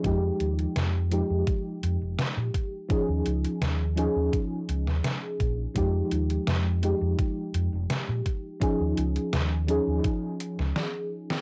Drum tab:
HH |x-xxx-x-x-x-x-x-|x-xxx-x-x-x-x-x-|x-xxx-x-x-x-x-x-|x-xxx-x-x-x-----|
SD |----o-------o---|----o------oo---|----o-------o---|----o------oo--o|
BD |o-------o-----o-|o-------o-----o-|o-------o-----o-|o-------o-------|